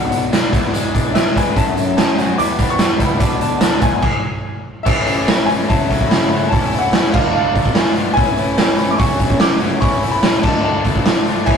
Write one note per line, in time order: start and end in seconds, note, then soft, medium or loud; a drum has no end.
0.00 0.50 B2 medium
0.00 0.53 B2 medium
0.00 0.51 F#3 medium
0.00 0.50 B3 medium
0.00 0.51 D4 loud
0.00 0.52 F#4 medium
0.09 0.47 B1 medium
0.09 0.49 F#5 medium
0.09 closed hi-hat medium
0.33 0.53 D4 medium
0.33 snare loud
0.33 closed hi-hat medium
0.51 1.55 E2 medium
0.51 0.89 E2 medium
0.51 1.11 E3 medium
0.51 1.13 B3 medium
0.51 1.13 D4 medium
0.51 1.14 G#4 medium
0.51 kick loud
0.51 closed hi-hat medium
0.64 snare soft
0.73 1.13 G#3 medium
0.73 closed hi-hat medium
0.94 1.31 B1 medium
0.94 1.56 D4 medium
0.94 kick medium
0.94 closed hi-hat medium
1.12 1.54 E3 medium
1.12 1.56 G#3 medium
1.12 1.54 B3 medium
1.12 1.54 D4 medium
1.12 1.55 G#4 medium
1.12 1.36 E5 medium
1.12 snare loud
1.12 closed hi-hat medium
1.34 1.54 E3 loud
1.34 1.55 E4 medium
1.34 1.58 G#5 medium
1.34 kick medium
1.34 closed hi-hat medium
1.55 2.38 F#2 medium
1.55 2.29 F#2 medium
1.55 2.16 F#3 medium
1.55 1.98 A3 medium
1.55 2.17 A3 medium
1.55 2.16 C#4 medium
1.55 2.16 F#4 medium
1.55 1.95 A5 medium
1.55 kick loud
1.55 closed hi-hat medium
1.77 closed hi-hat medium
1.96 2.38 C#4 loud
1.96 2.39 C#4 medium
1.96 2.35 A5 medium
1.96 snare loud
1.96 closed hi-hat medium
2.17 2.36 F#3 medium
2.17 2.37 A3 medium
2.17 2.37 C#4 medium
2.17 2.37 F#4 medium
2.17 2.39 F#4 medium
2.17 closed hi-hat medium
2.37 3.21 E2 medium
2.37 2.57 E2 loud
2.37 2.99 E3 medium
2.37 3.19 B3 medium
2.37 2.97 B3 medium
2.37 2.97 E4 loud
2.37 2.97 G4 loud
2.37 2.63 D6 loud
2.37 closed hi-hat medium
2.58 2.96 E2 medium
2.58 3.21 D4 medium
2.58 2.68 B5 medium
2.58 kick medium
2.58 closed hi-hat medium
2.70 3.02 C#6 loud
2.78 3.20 G3 medium
2.78 snare medium
2.78 closed hi-hat medium
2.98 3.18 C#2 medium
2.98 3.19 E3 medium
2.98 3.18 B3 medium
2.98 3.20 E4 medium
2.98 3.19 E4 medium
2.98 3.19 G4 medium
2.98 3.44 B5 loud
2.98 kick medium
2.98 closed hi-hat medium
3.18 3.39 B1 medium
3.18 3.80 B2 medium
3.18 3.82 B2 medium
3.18 3.81 F#3 medium
3.18 3.81 B3 medium
3.18 3.81 D4 loud
3.18 3.81 D4 medium
3.18 3.82 F#4 medium
3.18 kick loud
3.18 closed hi-hat medium
3.40 3.77 D2 medium
3.40 3.57 A5 medium
3.40 closed hi-hat medium
3.59 3.83 D4 medium
3.59 3.82 A5 medium
3.59 snare loud
3.59 closed hi-hat medium
3.80 4.01 E2 medium
3.80 4.03 E2 medium
3.80 4.02 B3 medium
3.80 4.00 G#5 medium
3.80 kick loud
3.80 closed hi-hat medium
4.01 4.61 G#5 medium
4.01 kick loud
4.01 crash medium
4.83 5.59 A1 medium
4.83 5.06 A2 medium
4.83 5.06 E3 medium
4.83 5.65 G#3 medium
4.83 5.06 A3 loud
4.83 5.07 C#4 loud
4.83 5.07 A4 loud
4.83 5.49 E5 medium
4.83 kick loud
4.83 crash loud
5.07 5.26 A2 medium
5.07 5.27 E3 medium
5.07 5.28 A3 medium
5.07 5.27 C#4 medium
5.07 5.29 A4 medium
5.07 open hi-hat medium
5.28 5.48 A2 medium
5.28 5.48 E3 medium
5.28 5.50 A3 medium
5.28 5.49 C#4 medium
5.28 5.50 A4 medium
5.28 snare loud
5.28 open hi-hat medium
5.46 5.68 A2 medium
5.46 5.68 E3 medium
5.46 5.71 A3 medium
5.46 5.69 C#4 medium
5.46 5.51 G#5 medium
5.46 open hi-hat medium
5.50 5.72 A4 medium
5.68 5.88 F#1 medium
5.68 5.91 F#2 medium
5.68 5.91 C#3 medium
5.68 5.91 F#3 medium
5.68 6.53 A3 medium
5.68 5.93 A3 medium
5.68 5.92 C#4 loud
5.68 5.92 F#4 loud
5.68 6.07 A5 medium
5.68 kick loud
5.68 open hi-hat medium
5.91 6.00 F#1 medium
5.91 6.11 F#2 medium
5.91 6.11 C#3 medium
5.91 6.12 F#3 medium
5.91 6.13 A3 medium
5.91 6.12 C#4 medium
5.91 6.13 F#4 medium
5.91 kick medium
5.91 open hi-hat medium
6.01 6.46 F#1 medium
6.01 kick medium
6.07 6.25 B5 loud
6.07 open hi-hat medium
6.11 6.32 F#2 loud
6.11 6.32 C#3 loud
6.11 6.32 F#3 loud
6.11 6.33 A3 medium
6.11 6.32 C#4 loud
6.11 6.33 F#4 loud
6.11 snare loud
6.22 snare soft
6.27 6.48 B5 medium
6.31 6.51 F#2 medium
6.31 6.51 C#3 medium
6.31 6.52 F#3 medium
6.31 6.53 A3 medium
6.31 6.52 C#4 medium
6.31 6.52 F#4 medium
6.31 open hi-hat medium
6.49 7.06 E1 medium
6.49 7.13 C#4 loud
6.49 6.82 A5 medium
6.49 open hi-hat medium
6.53 6.72 E3 medium
6.53 6.73 A3 loud
6.53 6.73 C#4 medium
6.53 6.73 E4 loud
6.53 kick loud
6.73 6.92 E3 medium
6.73 6.93 A3 medium
6.73 6.93 C#4 medium
6.73 6.94 E4 medium
6.73 open hi-hat medium
6.79 7.09 F#5 loud
6.93 7.13 E3 medium
6.93 7.14 A3 medium
6.93 7.13 C#4 medium
6.93 7.13 E4 medium
6.93 snare loud
6.93 open hi-hat medium
7.13 7.50 D2 medium
7.13 7.34 D3 medium
7.13 7.35 A3 medium
7.13 7.78 D4 loud
7.13 7.34 D4 medium
7.13 7.35 F4 medium
7.13 7.33 F5 medium
7.13 kick loud
7.13 crash loud
7.35 7.55 D3 medium
7.35 7.56 A3 medium
7.35 7.56 D4 loud
7.35 7.57 F4 loud
7.35 7.93 F5 medium
7.55 7.64 D3 medium
7.55 7.75 D3 medium
7.55 7.76 A3 medium
7.55 7.76 D4 medium
7.55 7.77 F4 medium
7.55 kick medium
7.55 open hi-hat medium
7.66 7.84 A1 medium
7.66 kick medium
7.75 7.96 D3 loud
7.75 7.97 A3 loud
7.75 7.96 C#4 loud
7.75 7.97 D4 loud
7.75 7.97 F4 loud
7.75 snare loud
7.75 open hi-hat medium
7.96 8.16 D3 medium
7.96 8.17 A3 medium
7.96 8.20 B3 medium
7.96 8.17 D4 medium
7.96 8.17 F4 loud
7.96 open hi-hat medium
8.14 8.36 A2 medium
8.14 8.37 E3 loud
8.14 8.73 G#5 loud
8.14 kick loud
8.14 open hi-hat medium
8.18 8.90 A1 medium
8.18 8.39 A3 loud
8.18 8.37 C#4 loud
8.18 8.98 C#4 loud
8.18 8.38 E4 loud
8.37 8.57 A2 medium
8.37 8.57 E3 medium
8.37 8.58 A3 medium
8.37 8.58 C#4 medium
8.37 8.58 E4 medium
8.37 open hi-hat medium
8.58 8.78 A2 medium
8.58 8.78 E3 medium
8.58 8.79 A3 medium
8.58 8.79 C#4 loud
8.58 8.79 E4 loud
8.58 snare loud
8.58 open hi-hat medium
8.76 8.98 A2 medium
8.76 8.98 E3 medium
8.76 8.99 A3 medium
8.76 8.98 C#4 medium
8.76 8.99 E4 medium
8.76 8.92 B5 loud
8.76 open hi-hat medium
8.91 8.99 D6 medium
8.98 9.18 F#1 medium
8.98 9.18 F#2 medium
8.98 9.19 C#3 medium
8.98 9.19 F#3 loud
8.98 9.20 A3 loud
8.98 9.38 C#4 loud
8.98 9.20 C#4 loud
8.98 9.20 F#4 loud
8.98 9.41 C#6 loud
8.98 kick loud
8.98 open hi-hat medium
9.19 9.29 F#1 medium
9.19 9.38 F#2 medium
9.19 9.38 C#3 medium
9.19 9.39 F#3 medium
9.19 9.40 A3 medium
9.19 9.39 C#4 medium
9.19 9.39 F#4 medium
9.19 kick medium
9.19 open hi-hat medium
9.30 9.76 F#1 medium
9.30 kick medium
9.39 9.59 F#2 loud
9.39 9.60 C#3 medium
9.39 9.60 F#3 loud
9.39 9.61 A3 loud
9.39 9.81 B3 medium
9.39 9.61 C#4 loud
9.39 9.61 F#4 loud
9.39 9.83 D6 loud
9.39 snare loud
9.39 open hi-hat medium
9.50 snare soft
9.60 9.80 F#2 medium
9.60 9.81 C#3 medium
9.60 9.81 F#3 medium
9.60 9.82 A3 loud
9.60 9.81 C#4 medium
9.60 9.81 F#4 loud
9.60 open hi-hat medium
9.80 10.37 E1 medium
9.80 10.02 E3 medium
9.80 10.03 A3 loud
9.80 10.16 C#4 loud
9.80 10.03 C#4 loud
9.80 10.04 E4 loud
9.80 10.13 C#6 loud
9.80 kick loud
9.80 open hi-hat medium
10.03 10.22 E3 medium
10.03 10.23 A3 medium
10.03 10.22 C#4 medium
10.03 10.22 E4 medium
10.03 open hi-hat medium
10.12 10.44 B5 loud
10.23 10.43 E3 medium
10.23 10.44 A3 medium
10.23 10.43 C#4 medium
10.23 10.43 E4 loud
10.23 snare loud
10.23 open hi-hat medium
10.40 10.63 D3 medium
10.40 11.00 D4 loud
10.40 10.63 A5 medium
10.40 kick loud
10.40 crash loud
10.44 10.81 D2 medium
10.44 10.64 A3 medium
10.44 10.63 D4 medium
10.44 10.64 F4 medium
10.64 10.84 D3 medium
10.64 10.86 A3 loud
10.64 10.85 D4 loud
10.64 10.85 F4 loud
10.64 11.23 A5 medium
10.84 11.05 D3 medium
10.84 10.95 D3 medium
10.84 11.07 A3 medium
10.84 11.06 D4 medium
10.84 11.07 F4 medium
10.84 kick medium
10.84 open hi-hat medium
10.95 11.14 A1 medium
10.95 kick medium
11.03 11.27 D3 medium
11.03 11.28 A3 loud
11.03 11.47 D4 loud
11.03 snare loud
11.03 open hi-hat medium
11.07 11.28 D4 loud
11.07 11.29 F4 loud
11.17 snare soft
11.26 11.47 D3 medium
11.26 11.49 A3 medium
11.26 11.48 D4 medium
11.26 11.48 F4 medium
11.26 open hi-hat medium
11.46 11.57 A1 medium
11.46 11.57 A2 medium
11.46 11.57 E3 loud
11.46 11.57 E3 medium
11.46 11.57 A3 loud
11.46 11.57 C#4 medium
11.46 11.57 C#4 loud
11.46 11.57 E4 loud
11.46 11.57 G#5 medium
11.46 kick loud
11.46 crash medium
11.50 11.57 E4 loud